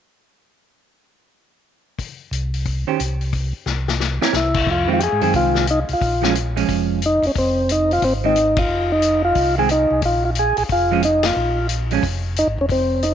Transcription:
1.99 kick, open hi-hat
2.31 tonewheel organ C2, closed hi-hat
2.54 open hi-hat
2.65 kick, open hi-hat
2.87 hollow-body jazz guitar D#3 C#4 G4 C5
3.00 tonewheel organ C2, closed hi-hat
3.21 open hi-hat
3.33 kick, open hi-hat
3.66 tonewheel organ C2, snare
3.88 snare
4.00 snare
4.21 hollow-body jazz guitar C4 E4 A#4 C#5, snare
4.33 tonewheel organ C2 E4, snare
4.54 kick, crash
4.66 tonewheel organ F2, kick
4.71 tonewheel organ F4
4.88 hollow-body jazz guitar D#3 G#3 C4
4.93 tonewheel organ F4
4.99 tonewheel organ G4, closed hi-hat
5.04 tonewheel organ G#4
5.12 tonewheel organ G#2
5.21 tonewheel organ F#2 G#4, hollow-body jazz guitar D#3 G#3 C4, open hi-hat
5.34 tonewheel organ C2 F4, kick, open hi-hat
5.55 snare
5.67 tonewheel organ D#4, closed hi-hat
5.89 tonewheel organ C2, open hi-hat
5.93 tonewheel organ F4
6.01 tonewheel organ A#1, kick, open hi-hat
6.22 hollow-body jazz guitar F3 G#3 C#4, snare
6.35 closed hi-hat
6.56 hollow-body jazz guitar F3 G#3 C#4, open hi-hat
6.68 tonewheel organ F1, kick, open hi-hat
7.02 closed hi-hat
7.06 tonewheel organ D#4
7.23 tonewheel organ F1, open hi-hat
7.27 tonewheel organ C#4
7.35 tonewheel organ F1 C4, kick, open hi-hat
7.69 tonewheel organ D#4, closed hi-hat
7.91 tonewheel organ F4, open hi-hat
8.02 tonewheel organ G#1 C4, kick, open hi-hat
8.24 hollow-body jazz guitar D#3 G#3 C4, tonewheel organ D#4
8.36 closed hi-hat
8.57 tonewheel organ F4, kick, ride
8.69 tonewheel organ F1
8.92 tonewheel organ D#4
9.02 closed hi-hat
9.25 tonewheel organ F4
9.35 tonewheel organ C2, kick, open hi-hat
9.58 hollow-body jazz guitar D#3 G#3 C4, tonewheel organ G#4
9.69 tonewheel organ D#4, closed hi-hat
9.91 tonewheel organ C2
10.02 tonewheel organ A#1 F4, kick, open hi-hat
10.25 tonewheel organ F4
10.35 closed hi-hat
10.39 tonewheel organ G#4
10.57 tonewheel organ A#1 G#4, open hi-hat
10.69 tonewheel organ F1 F4, kick, open hi-hat
10.91 hollow-body jazz guitar F3 G#3 C#4
11.02 tonewheel organ D#4, closed hi-hat
11.23 tonewheel organ F4, snare, ride
11.36 tonewheel organ A#1
11.69 closed hi-hat
11.91 hollow-body jazz guitar F3 G#3 C#4, open hi-hat
12.03 tonewheel organ F1, kick, open hi-hat
12.36 tonewheel organ D#4, closed hi-hat
12.47 tonewheel organ G#1
12.59 tonewheel organ E1 C#4
12.69 tonewheel organ F1 C4, kick, open hi-hat
13.02 tonewheel organ D#4, closed hi-hat

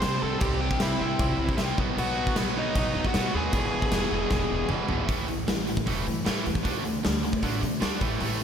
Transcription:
0.02 distorted electric guitar C3 G3 C4, upright bass C3, lead electric guitar C5 C6, snare, crash
0.22 upright bass C2, distorted electric guitar C3 G3 C4, lead electric guitar A4 A5
0.40 upright bass C2, distorted electric guitar C3 G3 C4, lead electric guitar G4 G5, kick, crash
0.61 lead electric guitar G4 G5
0.71 kick
0.80 upright bass C2, distorted electric guitar C3 G3 C4, lead electric guitar E4 E5, snare, crash
1.00 upright bass C2, distorted electric guitar C3 G3 C4
1.19 upright bass C2, distorted electric guitar C3 G3 C4, kick, crash
1.38 upright bass C2
1.49 kick
1.58 upright bass C2, distorted electric guitar C3 G3 C4, snare, crash
1.78 upright bass B1, distorted electric guitar B2 F#3 B3, kick
1.97 upright bass B1, distorted electric guitar B2 F#3 B3, lead electric guitar F#4 F#5, crash
2.27 kick
2.36 upright bass B1, distorted electric guitar B2 F#3 B3, snare, crash
2.55 distorted electric guitar B2 F#3 B3, lead electric guitar D#4 D#5
2.75 upright bass B1, distorted electric guitar B2 F#3 B3, lead electric guitar D#4, kick, crash
2.79 lead electric guitar D#5
2.95 upright bass D#2
3.05 lead electric guitar F#4 F#5, kick
3.14 upright bass B2, distorted electric guitar B2 F#3 B3, snare, crash
3.34 upright bass D#2, distorted electric guitar B2 F#3 B3, lead electric guitar G#4 G#5
3.53 upright bass E1, distorted electric guitar E2 B2 E3, kick, crash
3.82 kick
3.91 upright bass E1, distorted electric guitar E2 B2 E3, snare, crash
4.11 upright bass E1, distorted electric guitar E2 B2 E3
4.30 upright bass E1, distorted electric guitar E2 B2 E3, kick, snare
4.50 upright bass E1
4.69 upright bass E1, distorted electric guitar E2 B2 E3, mid tom
4.88 upright bass G#1, distorted electric guitar E2 B2 E3, floor tom
5.06 upright bass A1, distorted electric guitar A2 E3 A3, kick, open hi-hat
5.27 distorted electric guitar A2 E3, open hi-hat
5.47 upright bass A1, distorted electric guitar A2 E3, snare, open hi-hat
5.67 distorted electric guitar A2 E3, open hi-hat
5.77 kick
5.86 upright bass E1, distorted electric guitar A2 E3 A3, kick, open hi-hat
6.06 upright bass F#2, distorted electric guitar A2 E3, open hi-hat
6.25 upright bass A1, distorted electric guitar A2 E3 A3, snare, open hi-hat
6.44 upright bass E2, distorted electric guitar A2 E3, open hi-hat
6.55 kick
6.63 upright bass D2, distorted electric guitar D3 A3 D4, kick, open hi-hat
6.84 distorted electric guitar D3 A3, open hi-hat
7.03 upright bass D2, distorted electric guitar D3 A3, snare, open hi-hat
7.23 distorted electric guitar D3 A3, open hi-hat
7.33 kick
7.42 upright bass A1, distorted electric guitar D3 A3 D4, kick, open hi-hat
7.62 upright bass B2, distorted electric guitar D3 A3, open hi-hat
7.80 upright bass D2, distorted electric guitar D3 A3 D4, snare, open hi-hat
8.00 upright bass A1, distorted electric guitar A2 E3 A3, kick, open hi-hat
8.20 upright bass A1, distorted electric guitar A2 E3 A3, open hi-hat
8.40 distorted electric guitar A2 E3, open hi-hat

